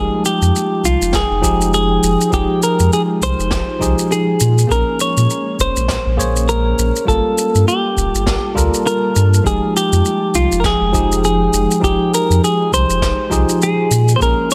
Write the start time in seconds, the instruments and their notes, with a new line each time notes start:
Already playing: tine electric piano F3 G#3 D#4 G4, ambient pad F3 G#3 D#4 G5, clean electric guitar G#4
0.25 clean electric guitar G4, shaker
0.41 sub bass F2, shaker
0.56 shaker
0.84 sub bass C2, clean electric guitar F4, kick, shaker
1.01 sub bass F1, shaker
1.13 clean electric guitar G#4, kick, snare, shaker
1.31 sub bass F1
1.42 tine electric piano F3 D#4 G4 G#4, kick, shaker
1.61 shaker
1.74 clean electric guitar G#4, shaker
2.03 sub bass F1, shaker
2.21 shaker
2.30 sub bass F1, tine electric piano F3 D#4 G4, ambient pad F4, clean electric guitar G4, kick, shaker
2.35 tine electric piano G#4
2.63 clean electric guitar A#4, shaker
2.79 sub bass F2, shaker
2.93 clean electric guitar G#4, shaker
3.21 sub bass C2, clean electric guitar C5, kick, shaker
3.39 sub bass F1, shaker
3.51 kick, snare, shaker
3.79 sub bass C2, tine electric piano F3 D#4 G4 G#4, kick, shaker
3.99 shaker
4.12 clean electric guitar G#4, shaker
4.40 sub bass A#2, ambient pad G#3 A#3 C#4, shaker
4.58 shaker
4.67 sub bass A#1, tine electric piano A#3 G#4 A#4, kick, shaker
4.72 tine electric piano C#4, clean electric guitar A#4
5.00 clean electric guitar C#5, shaker
5.17 sub bass A#2, shaker
5.30 shaker
5.59 sub bass F1, clean electric guitar C5, kick, shaker
5.76 sub bass A#1, shaker
5.88 kick, snare, shaker
6.06 sub bass A#1
6.17 tine electric piano A#3 G#4 C5 C#5, kick, shaker
6.36 shaker
6.49 clean electric guitar A#4, shaker
6.78 sub bass A#1, shaker
6.96 shaker
7.05 sub bass G1, tine electric piano G3 F4 A4, ambient pad G3 A#3 F4 A5, clean electric guitar A4, kick, shaker
7.10 tine electric piano A#3
7.38 shaker
7.55 sub bass G2, shaker
7.68 clean electric guitar G4, shaker
7.96 sub bass D1, kick, shaker
8.14 sub bass G1, shaker
8.26 kick, snare, shaker
8.55 sub bass D2, tine electric piano G3 F4 A4 A#4, kick, shaker
8.74 shaker
8.87 clean electric guitar A#4, shaker
9.16 sub bass G2, shaker
9.34 shaker
9.43 sub bass F1, tine electric piano F3 D#4 G4, ambient pad F3 G#3 D#4 G5, kick, shaker
9.47 tine electric piano G#3, clean electric guitar G#4
9.77 clean electric guitar G4, shaker
9.92 sub bass F2, shaker
10.05 shaker
10.34 sub bass C2, clean electric guitar F4, kick, shaker
10.51 sub bass F1, shaker
10.60 clean electric guitar A#4, kick, snare
10.64 clean electric guitar G#4, shaker
10.81 sub bass F1
10.93 tine electric piano F3 D#4 G4 G#4, kick, shaker
11.12 shaker
11.24 clean electric guitar G#4, shaker
11.53 sub bass F1, shaker
11.71 shaker
11.80 sub bass F1, tine electric piano F3 D#4 G4, ambient pad F4, kick
11.84 clean electric guitar G4, tine electric piano G#4, shaker
12.14 clean electric guitar A#4, shaker
12.30 sub bass F2, shaker
12.44 clean electric guitar G#4, shaker
12.72 sub bass C2, clean electric guitar C5, kick, shaker
12.89 sub bass F1, shaker
13.01 kick, snare, shaker
13.30 sub bass C2, tine electric piano F3 D#4 G4 G#4, kick, shaker
13.49 shaker
13.62 clean electric guitar G#4, shaker
13.91 sub bass A#2, ambient pad G#3 A#3 C#4, shaker
14.08 shaker
14.16 tine electric piano A#3 G#4, clean electric guitar C5
14.20 sub bass A#1, tine electric piano C#4 A#4, clean electric guitar A#4, kick, shaker
14.51 shaker